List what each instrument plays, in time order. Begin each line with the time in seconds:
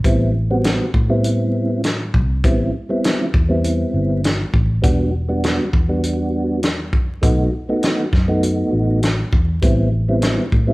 0.04 fingered electric bass A1, tonewheel organ G3 B3 C4 E4, kick, closed hi-hat
0.50 tonewheel organ G3 B3 C4 F#4
0.64 snare, closed hi-hat
0.94 fingered electric bass A2, kick
1.09 tonewheel organ G3 B3 C4 E4
1.24 closed hi-hat
1.84 snare, closed hi-hat
2.14 fingered electric bass C2, kick
2.44 fingered electric bass A1, tonewheel organ G3 B3 C4 E4, kick, closed hi-hat
2.89 tonewheel organ G3 B3 C4 E4
3.04 snare, closed hi-hat
3.34 fingered electric bass E2, kick
3.49 tonewheel organ G3 B3 C4 E4
3.64 closed hi-hat
3.94 fingered electric bass G1
4.24 snare, closed hi-hat
4.54 fingered electric bass A1, kick
4.82 fingered electric bass E1, tonewheel organ G3 B3 D4 F#4, kick, closed hi-hat
5.29 tonewheel organ G3 B3 D4 F#4
5.44 snare, closed hi-hat
5.73 fingered electric bass E2, kick
5.89 tonewheel organ G3 B3 D4 F#4
6.03 closed hi-hat
6.63 snare, closed hi-hat
6.93 fingered electric bass F#2, kick
7.22 fingered electric bass B1, tonewheel organ A3 B3 D#4 F#4, kick, closed hi-hat
7.69 tonewheel organ A3 B3 D#4 F#4
7.83 snare, closed hi-hat
8.13 fingered electric bass F#2, kick, snare
8.28 tonewheel organ A3 B3 D#4 F#4
8.43 closed hi-hat
8.73 fingered electric bass A1
9.03 snare, closed hi-hat
9.33 fingered electric bass E2, kick
9.62 fingered electric bass A1, tonewheel organ G3 B3 C4 E4, kick, closed hi-hat
10.08 tonewheel organ G3 B3 C4 E4
10.22 snare, closed hi-hat
10.52 fingered electric bass A2, kick
10.67 tonewheel organ G3 B3 C4 E4